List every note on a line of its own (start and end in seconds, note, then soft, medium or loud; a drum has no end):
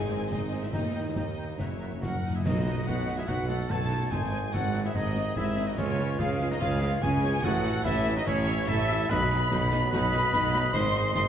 0.00 0.70 G#1 medium
0.00 0.75 G#1 medium
0.00 0.70 G#2 medium
0.00 0.31 C4 medium
0.00 0.31 D#4 medium
0.00 0.32 G#4 loud
0.00 0.32 G#5 medium
0.11 0.21 C5 medium
0.11 0.21 D#5 medium
0.11 0.17 G#5 medium
0.31 0.73 C4 medium
0.31 0.73 D#4 medium
0.31 0.64 D#4 medium
0.31 0.41 C5 medium
0.31 0.62 D#5 medium
0.31 0.42 D#5 medium
0.31 0.64 D#5 medium
0.31 0.38 G#5 medium
0.31 concert bass drum medium
0.31 snare medium
0.53 0.63 C5 medium
0.53 0.63 D#5 medium
0.53 0.59 G#5 medium
0.53 snare medium
0.63 0.75 E4 medium
0.63 0.74 E5 medium
0.63 0.75 E5 medium
0.63 snare medium
0.72 1.60 D#2 medium
0.72 1.61 D#2 medium
0.72 1.16 A#3 medium
0.72 1.15 D#4 medium
0.72 1.15 D#5 medium
0.72 0.83 D#5 medium
0.72 0.83 G5 medium
0.72 0.80 A#5 medium
0.72 concert bass drum medium
0.72 snare medium
0.76 1.18 D#5 medium
0.94 1.04 D#5 medium
0.94 1.05 G5 medium
0.94 1.01 A#5 soft
1.15 1.59 A#3 medium
1.15 1.59 D#4 medium
1.15 1.25 D#5 soft
1.15 1.59 D#5 medium
1.15 1.26 G5 medium
1.15 1.22 A#5 medium
1.15 concert bass drum medium
1.15 snare medium
1.19 1.60 D#5 medium
1.37 1.47 D#5 soft
1.37 1.48 G5 soft
1.37 1.44 A#5 soft
1.58 2.25 F#1 medium
1.58 1.66 F#2 soft
1.58 2.26 F#2 medium
1.58 1.98 A#3 medium
1.58 2.24 C#4 medium
1.58 1.99 E4 medium
1.58 2.02 C#5 medium
1.58 2.04 C#5 medium
1.58 1.69 E5 medium
1.58 1.71 F#5 medium
1.58 1.65 A#5 soft
1.58 concert bass drum medium
1.58 snare medium
1.67 1.74 F#2 soft
1.75 1.83 F#2 soft
1.80 1.91 F#2 soft
1.80 1.91 E5 soft
1.80 1.92 F#5 medium
1.80 1.86 A#5 soft
1.92 1.98 F#2 medium
1.99 2.06 F#2 medium
1.99 2.11 E4 medium
1.99 2.16 F#4 medium
1.99 2.32 F#5 medium
1.99 2.33 F#5 medium
1.99 concert bass drum medium
1.99 snare medium
2.04 2.13 F#2 medium
2.04 2.34 A#4 medium
2.04 2.34 F#5 medium
2.14 2.21 F#2 medium
2.22 2.29 F#2 medium
2.22 2.43 D#4 medium
2.30 2.37 F#2 medium
2.35 2.47 E4 medium
2.35 2.47 G#4 medium
2.35 2.40 E5 medium
2.35 2.46 E5 medium
2.35 2.41 E5 medium
2.39 2.46 F#2 medium
2.45 2.82 B1 medium
2.45 2.83 B1 medium
2.45 2.83 B2 medium
2.45 3.05 B2 loud
2.45 2.84 F#3 medium
2.45 2.53 B3 medium
2.45 2.84 B3 medium
2.45 2.53 D#4 medium
2.45 2.89 D#4 medium
2.45 2.87 F#4 medium
2.45 2.88 D#5 medium
2.45 2.86 D#5 medium
2.45 2.87 D#5 medium
2.45 concert bass drum medium
2.45 snare medium
2.45 crash medium
2.65 2.73 B3 medium
2.65 2.73 D#4 medium
2.65 snare soft
2.86 3.24 B1 medium
2.86 3.24 B2 medium
2.86 3.27 F#3 medium
2.86 2.94 B3 medium
2.86 3.27 B3 medium
2.86 2.95 D#4 medium
2.86 3.17 F#4 medium
2.86 3.17 B4 medium
2.86 3.17 F#5 medium
2.86 3.18 F#5 medium
2.86 3.19 F#5 medium
2.86 concert bass drum medium
2.86 snare medium
3.07 3.15 B3 medium
3.07 3.15 D#4 medium
3.07 snare medium
3.18 3.27 E4 medium
3.18 3.30 G#4 medium
3.18 3.29 E5 medium
3.18 3.31 E5 medium
3.18 3.29 E5 medium
3.18 snare medium
3.27 3.66 B1 medium
3.27 3.65 B2 medium
3.27 3.69 F#3 medium
3.27 3.36 B3 medium
3.27 4.10 B3 medium
3.27 3.35 D#4 medium
3.27 3.48 F#4 medium
3.27 3.48 B4 medium
3.27 3.35 F#5 medium
3.27 3.49 F#5 medium
3.27 3.48 F#5 loud
3.27 3.49 F#5 medium
3.27 concert bass drum medium
3.27 snare medium
3.49 3.57 B3 medium
3.49 3.57 D#4 medium
3.49 3.69 F#4 medium
3.49 3.72 A4 medium
3.49 3.59 F#5 medium
3.49 3.70 F#5 medium
3.49 3.56 F#5 medium
3.49 snare medium
3.60 snare medium
3.69 4.08 B1 medium
3.69 4.07 B2 medium
3.69 4.11 E3 medium
3.69 3.77 B3 medium
3.69 3.77 D#4 medium
3.69 4.11 A4 medium
3.69 4.11 C#5 medium
3.69 4.12 A5 medium
3.69 4.11 A5 medium
3.69 4.12 A5 medium
3.69 4.14 A5 medium
3.69 concert bass drum medium
3.69 snare medium
3.90 3.99 B3 medium
3.90 3.98 D#4 medium
4.10 4.49 G#1 medium
4.10 4.49 G#2 medium
4.10 4.95 D#3 medium
4.10 4.18 C4 medium
4.10 4.94 C4 medium
4.10 4.18 D#4 medium
4.10 4.54 G#4 medium
4.10 4.53 C5 medium
4.10 4.53 G#5 medium
4.10 4.54 G#5 medium
4.10 4.55 G#5 medium
4.10 concert bass drum medium
4.10 snare medium
4.23 snare medium
4.31 4.39 C4 medium
4.31 4.39 D#4 medium
4.31 snare soft
4.53 4.90 G#1 medium
4.53 4.91 G#1 medium
4.53 4.91 G#2 medium
4.53 4.61 C4 medium
4.53 4.61 D#4 medium
4.53 4.86 F#4 medium
4.53 4.85 A4 medium
4.53 4.84 F#5 medium
4.53 4.85 F#5 medium
4.53 4.85 F#5 loud
4.53 4.86 F#5 medium
4.53 concert bass drum medium
4.53 snare medium
4.73 4.82 C4 medium
4.73 4.81 D#4 medium
4.73 snare medium
4.84 4.97 E4 medium
4.84 4.91 G#4 medium
4.84 4.95 E5 medium
4.84 4.90 E5 medium
4.84 4.96 E5 medium
4.84 4.91 E5 medium
4.84 snare medium
4.94 5.32 G#1 loud
4.94 5.33 G#1 medium
4.94 5.32 G#2 medium
4.94 5.77 C3 medium
4.94 5.02 C4 medium
4.94 5.77 C4 medium
4.94 5.03 D#4 medium
4.94 5.36 D#4 loud
4.94 5.35 G#4 medium
4.94 5.36 D#5 medium
4.94 5.36 D#5 loud
4.94 5.37 D#5 medium
4.94 concert bass drum medium
5.15 5.23 C4 medium
5.15 5.23 D#4 medium
5.15 snare medium
5.36 5.74 G#1 medium
5.36 5.74 G#2 medium
5.36 5.44 C4 medium
5.36 5.44 D#4 medium
5.36 5.67 E4 medium
5.36 5.67 G#4 medium
5.36 5.68 E5 medium
5.36 5.67 E5 loud
5.36 5.44 E5 medium
5.36 5.68 E5 medium
5.36 concert bass drum medium
5.57 5.65 C4 medium
5.57 5.66 D#4 medium
5.57 snare medium
5.67 5.73 D#4 medium
5.67 5.77 F#4 medium
5.67 5.78 D#5 medium
5.67 5.76 D#5 medium
5.67 5.79 D#5 medium
5.77 6.15 C#2 medium
5.77 6.15 C#3 medium
5.77 6.18 F3 medium
5.77 6.18 C#4 medium
5.77 6.17 C#4 medium
5.77 5.87 C#4 medium
5.77 6.20 F4 medium
5.77 5.87 F4 medium
5.77 6.19 C#5 medium
5.77 6.19 C#5 loud
5.77 6.20 C#5 medium
5.77 concert bass drum medium
5.77 snare medium
5.77 crash soft
5.99 6.08 C#4 medium
5.99 6.08 F4 medium
5.99 snare medium
6.19 6.56 C#2 medium
6.19 6.57 C#2 medium
6.19 6.57 C#3 medium
6.19 6.60 F3 medium
6.19 6.60 C#4 medium
6.19 6.29 C#4 medium
6.19 6.33 F4 medium
6.19 6.28 F4 medium
6.19 6.50 G#4 medium
6.19 6.51 F5 medium
6.19 6.51 F5 loud
6.19 6.28 F5 medium
6.19 6.52 F5 medium
6.19 concert bass drum medium
6.19 snare medium
6.40 6.49 C#4 medium
6.40 6.49 F4 medium
6.40 snare medium
6.50 6.62 D#4 medium
6.50 6.56 F#4 medium
6.50 6.56 D#5 medium
6.50 6.62 D#5 medium
6.50 snare medium
6.60 6.98 C#2 loud
6.60 6.98 C#2 medium
6.60 6.98 C#3 medium
6.60 7.02 C#4 medium
6.60 6.70 C#4 medium
6.60 6.80 F4 loud
6.60 6.70 F4 medium
6.60 6.81 G#4 loud
6.60 6.67 F5 loud
6.60 6.81 F5 loud
6.60 6.82 F5 loud
6.60 6.81 F5 loud
6.60 concert bass drum medium
6.60 snare medium
6.81 6.91 C#4 medium
6.81 7.04 F4 medium
6.81 6.92 F4 medium
6.81 6.92 G#4 loud
6.81 7.03 F5 loud
6.81 7.02 F5 loud
6.81 6.91 F5 medium
6.81 snare medium
6.93 snare medium
7.02 7.39 C#2 medium
7.02 7.39 C#3 loud
7.02 7.43 F3 medium
7.02 7.43 C#4 medium
7.02 7.12 C#4 medium
7.02 7.12 F4 medium
7.02 7.44 G#4 loud
7.02 7.46 C#5 loud
7.02 7.43 G#5 loud
7.02 7.45 G#5 medium
7.02 7.43 G#5 loud
7.02 7.44 G#5 loud
7.02 concert bass drum medium
7.02 snare medium
7.24 7.32 C#4 medium
7.24 7.32 F4 medium
7.43 7.81 A1 medium
7.43 7.81 A1 loud
7.43 7.81 A2 loud
7.43 7.84 E3 medium
7.43 7.85 C#4 loud
7.43 7.54 C#4 medium
7.43 7.54 E4 medium
7.43 7.84 F#4 loud
7.43 7.85 A4 loud
7.43 7.85 F#5 loud
7.43 concert bass drum medium
7.43 snare medium
7.55 snare medium
7.65 7.74 C#4 medium
7.65 7.74 E4 medium
7.65 snare medium
7.84 8.22 A1 loud
7.84 8.22 A1 medium
7.84 8.22 A2 loud
7.84 8.26 E3 medium
7.84 7.94 C#4 medium
7.84 8.26 C#4 medium
7.84 8.15 E4 loud
7.84 7.94 E4 medium
7.84 8.16 A4 loud
7.84 8.16 E5 loud
7.84 8.17 E5 medium
7.84 8.16 E5 loud
7.84 8.17 E5 loud
7.84 concert bass drum medium
7.84 snare medium
8.07 8.16 C#4 medium
8.07 8.16 E4 medium
8.07 snare medium
8.16 8.28 D#4 medium
8.16 8.27 F#4 medium
8.16 8.27 D#5 medium
8.16 8.27 D#5 loud
8.16 8.27 D#5 medium
8.16 8.27 D#5 loud
8.16 snare medium
8.26 8.63 A1 medium
8.26 8.64 A1 loud
8.26 8.63 A2 loud
8.26 8.67 E3 medium
8.26 8.67 C#4 loud
8.26 8.67 C#4 medium
8.26 8.37 C#4 medium
8.26 8.68 E4 loud
8.26 8.36 E4 medium
8.26 8.68 C#5 loud
8.26 8.70 C#5 loud
8.26 concert bass drum medium
8.47 8.55 C#4 medium
8.47 8.55 E4 medium
8.47 snare medium
8.68 9.05 A1 loud
8.68 9.06 A2 loud
8.68 9.10 E3 loud
8.68 8.76 C#4 medium
8.68 9.10 C#4 medium
8.68 9.09 E4 loud
8.68 8.76 E4 medium
8.68 9.12 A4 loud
8.68 9.09 E5 loud
8.68 9.10 E5 loud
8.68 9.11 E5 loud
8.68 concert bass drum medium
8.90 8.99 C#4 medium
8.90 8.99 E4 medium
8.90 snare medium
9.10 9.47 B1 loud
9.10 9.47 B2 loud
9.10 9.69 B2 loud
9.10 10.70 F#3 loud
9.10 9.19 F#3 medium
9.10 11.28 D#4 loud
9.10 9.18 D#4 medium
9.10 9.64 B4 loud
9.10 9.66 D#5 loud
9.10 9.65 B5 loud
9.10 9.91 B5 loud
9.10 9.92 B5 loud
9.10 concert bass drum medium
9.10 snare medium
9.10 crash soft
9.32 9.41 F#3 medium
9.32 9.41 D#4 medium
9.32 snare medium
9.51 9.88 B1 loud
9.51 9.88 B2 loud
9.51 9.60 F#3 medium
9.51 9.60 D#4 medium
9.51 concert bass drum medium
9.51 snare medium
9.72 9.80 F#3 medium
9.72 9.80 D#4 loud
9.72 snare medium
9.83 snare medium
9.91 10.28 B1 loud
9.91 10.29 B1 loud
9.91 10.28 B2 loud
9.91 10.02 F#3 loud
9.91 10.02 D#4 loud
9.91 10.69 B4 loud
9.91 10.71 D#5 loud
9.91 10.72 B5 loud
9.91 10.76 B5 loud
9.91 10.73 B5 loud
9.91 concert bass drum medium
9.91 snare medium
10.13 10.21 F#3 medium
10.13 10.21 D#4 medium
10.13 snare medium
10.23 snare medium
10.33 10.69 B1 loud
10.33 10.69 B2 loud
10.33 10.42 F#3 medium
10.33 10.42 D#4 medium
10.33 concert bass drum medium
10.33 snare medium
10.54 10.63 F#3 medium
10.54 10.62 D#4 medium
10.73 11.10 G#1 loud
10.73 11.10 G#2 loud
10.73 11.28 G#3 loud
10.73 10.82 G#3 medium
10.73 10.82 D#4 loud
10.73 11.14 C5 loud
10.73 11.14 D#5 loud
10.73 11.14 C6 loud
10.73 11.13 C6 loud
10.73 11.14 C6 loud
10.73 concert bass drum loud
10.73 snare medium
10.84 snare medium
10.95 11.03 G#3 medium
10.95 11.03 D#4 medium
10.95 snare medium
11.14 11.28 G#1 loud
11.14 11.28 G#2 loud
11.14 11.24 G#3 medium
11.14 11.24 D#4 medium
11.14 11.28 C5 loud
11.14 11.25 D#5 loud
11.14 11.28 C6 loud
11.14 11.23 C6 loud
11.14 concert bass drum medium
11.14 snare medium